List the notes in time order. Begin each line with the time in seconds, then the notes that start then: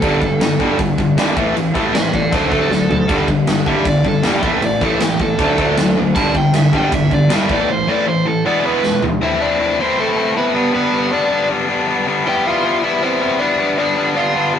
Already playing: A4
0.02 G1 G2 D3 G3, kick, crash
0.21 G1 G2 D3, kick
0.40 G1 G2 D3, snare, crash
0.59 G1 G2 D3 G3, kick
0.79 G1 G2 D3, kick, crash
0.98 G1 G2 D3, kick
1.17 G#1 G2 D3 G3, snare, crash
1.36 A1 A2 E3 A3, kick
1.55 A1 A2 E3, crash
1.74 A1 A2 E3 A3, kick
1.93 A1 A2 E3 C5 E5, snare, crash
2.13 A1 A2 E3 A4 D5, kick
2.31 D2 D3 F#3 A3 D4 A4, kick, crash
2.35 C5
2.50 D2 D3 F#3 A3 D4 A4, kick
2.70 D2 D3 F#3 A3, snare
2.89 D2 D3 F#3 A3, floor tom
3.07 G1 G2 D3 G3, kick, crash
3.27 G1 G2 D3, kick
3.47 G1 G2 D3, snare, crash
3.66 G1 G2 D3 G3 E5, kick
3.85 G1 G2 D3 D5, kick, crash
4.04 G1 G2 D3 A4, kick
4.22 G1 G2 D3 G3, snare, crash
4.27 G4
4.41 A1 A2 E3 A3, kick
4.47 E5
4.62 A1 A2 E3 D5, crash
4.81 A1 A2 E3 A3 A4, kick
5.00 A1 A2 E3 G4, snare, crash
5.20 A1 A2 E3 A4, kick
5.38 D2 D3 F#3 A3 D4, kick, crash
5.58 D2 D3 F#3 A3 D4, kick
5.77 D2 D3 F#3 A3, snare, crash
5.97 D2 D3 F#3 A3
6.15 G1 G2 D3 G3 A5, kick, crash
6.35 G1 G2 D3 G5, kick
6.53 G1 G2 D3 E5, snare, crash
6.72 G1 G2 D3 G3 G5, kick
6.92 G1 G2 D3 E5, kick, crash
7.10 G1 G2 D3 D5, kick
7.29 G1 G2 D3 G3, snare, crash
7.33 E5
7.49 A1 A2 E3 A3 D5, kick
7.68 A2 E3 C5
7.87 A2 E3 A3 D5
8.06 A2 E3 C5
8.25 A2 E3 A4
8.45 E2 B2 E3 G#3 B3 D5
8.64 E2 B2 E3 G#3 B3 B4
8.83 E2 B2 E3 G#3, snare
9.02 E2 B2 E3 G#3, floor tom
9.21 A2 E3 A3 C4 E4 E5
9.40 A2 E3 A3 C4 D4 E4 D5
9.59 A2 E3 A3 C4 E4
9.78 A2 E3 A3 C4 E4 C5
9.97 A2 E3 A3 C4 E4 A4
10.16 A2 E3 A3 C4 E4
10.34 A2 E3 A3 B3 C4 E4 B4
10.53 G2 D3 G3 B3 D4
10.72 G2 D3 G3 B3 D4 B4
10.92 G2 D3 G3 B3 D4
11.12 G2 D3 G3 B3 D4 D5
11.30 G2 D3 G3 B3 D4
11.49 G2 D3 G3 B3 D4
11.67 G2 D3 G3 B3 D4
11.87 G2 D3 G3 B3 D4
12.07 G2 D3 G3 B3 D4
12.25 E3 G3 B3 E4 G4 G5
12.44 E3 G3 B3 E4 F4 F5
12.63 E3 G3 B3 E4
12.82 E3 G3 B3 E4 E5
13.02 E3 G3 B3 C4 E4 C5
13.21 E3 G3 B3 E4
13.39 E3 G3 B3 D4 E4 D5
13.58 E3 G3 B3 E4
13.77 G2 D3 G3 B3 D4 D5
13.96 G2 D3 G3 B3 D4
14.15 G2 D3 G3 B3 D4 F4 F5
14.34 G2 D3 G3 B3 D4
14.53 G2 D3 G3 B3 D4